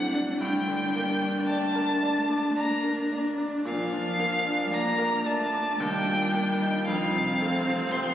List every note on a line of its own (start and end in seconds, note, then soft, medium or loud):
0.00 0.38 A2 medium
0.00 0.42 F#3 medium
0.00 0.45 A3 medium
0.00 0.31 C4 medium
0.00 5.80 D4 medium
0.00 0.41 F#5 loud
0.14 0.41 D4 medium
0.41 3.62 G2 medium
0.41 1.48 G3 loud
0.41 1.47 G5 loud
0.67 1.11 D3 medium
0.96 1.38 A#3 medium
1.23 1.65 D4 medium
1.48 2.59 A3 loud
1.48 1.92 D5 medium
1.48 2.54 A5 loud
1.75 2.19 A#4 medium
2.03 2.46 D5 medium
2.30 2.74 D6 medium
2.56 3.12 A#3 loud
2.56 3.01 D5 medium
2.56 3.12 A#5 loud
2.84 3.28 A#4 medium
3.12 3.56 D5 medium
3.38 3.66 D4 medium
3.65 5.77 A#2 medium
3.65 4.73 F3 loud
3.65 4.75 F5 loud
3.93 4.36 F3 medium
4.19 4.62 A#3 medium
4.45 4.89 D4 medium
4.72 5.26 A#3 loud
4.72 5.16 D5 medium
4.72 5.28 A#5 loud
4.98 5.42 A#4 medium
5.25 5.80 A3 loud
5.25 5.69 D5 medium
5.25 5.81 A5 loud
5.53 5.81 D6 medium
5.80 6.85 D#2 medium
5.80 6.88 G3 loud
5.80 6.90 D4 loud
5.80 6.87 G5 loud
6.07 6.51 A#2 medium
6.34 6.77 A#3 medium
6.62 6.88 D#4 medium
6.86 8.14 F2 medium
6.86 7.92 F3 loud
6.86 8.14 C4 loud
6.86 7.93 F5 loud
7.14 7.56 C3 medium
7.41 7.82 A3 medium
7.67 8.08 C4 medium
7.91 8.14 C4 loud
7.91 8.14 C5 medium
7.91 8.14 C6 loud